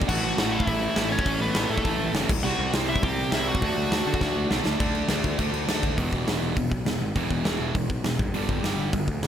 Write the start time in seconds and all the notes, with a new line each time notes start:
0.02 kick
0.08 A1 A2 E3 A3 F#4 F#5, kick, crash
0.23 A1
0.37 A1 A2 E3 A3 F#4 F#5, snare, open hi-hat
0.52 E4 E5
0.60 kick
0.67 A1 A2 E3 A3, kick, open hi-hat
0.96 A1 A2 E3 A3, snare, open hi-hat
1.11 C#4 C#5
1.19 kick
1.25 A1 A2 E3 A3, kick, open hi-hat
1.39 A1 B3 B4
1.55 A1 A2 E3 A3, snare, open hi-hat
1.70 A2 A3 A4
1.78 kick
1.85 A1 A2 E3 A3, kick, open hi-hat
1.99 A1
2.13 F#1 A2 E3 A3, snare, open hi-hat
2.29 C2, kick, crash
2.42 C2 C3 G3 C4 F#4 F#5
2.58 C2
2.73 C2 C3 G3 C4, snare, open hi-hat
2.89 E4 E5
2.96 kick
3.03 C2 C3 G3 C4 G4 G5, kick, open hi-hat
3.31 C2 C3 G3 C4 E4 E5, snare, open hi-hat
3.48 F#4 F#5
3.55 kick
3.62 D2 D3 A3 D4, kick, open hi-hat
3.77 D2
3.91 D2 D3 A3 D4, snare, open hi-hat
4.07 D3
4.14 kick
4.21 D2 D3 A3 D4, kick, snare
4.36 D2
4.50 B1 D3 A3 D4, snare
4.66 D2, snare
4.79 D2 D3 A3 D4, kick, crash
4.95 crash
5.09 D2 D3 A3 D4, snare, crash
5.24 D2, kick, crash
5.38 D2 D3 A3 D4, kick, crash
5.52 D2, crash
5.68 D2 D3 A3 D4, snare, crash
5.83 D2, kick, crash
5.97 E1 E2 B2 E3, kick, open hi-hat
6.12 E1, kick
6.27 E1 E2 B2 E3, snare, open hi-hat
6.41 E1
6.56 E1 E2 B2, kick, open hi-hat
6.71 B1, kick
6.85 E1 E2 B2, snare, open hi-hat
7.00 G#1
7.15 E1 E2 B2 E3, kick, open hi-hat
7.31 E1, kick
7.45 E1 E2 B2 E3, snare, open hi-hat
7.59 E1
7.75 E1 E2 B2, kick, open hi-hat
7.90 B1, kick
8.04 E1 E2 B2, snare, open hi-hat
8.19 G1, kick
8.34 G1 G2 D3 G3, open hi-hat
8.49 G1, kick
8.63 G1 G2 D3 G3, snare, open hi-hat
8.78 G1
8.93 G1 G2 D3, kick, open hi-hat
9.08 D2, kick
9.21 G1 G2 D3, snare, open hi-hat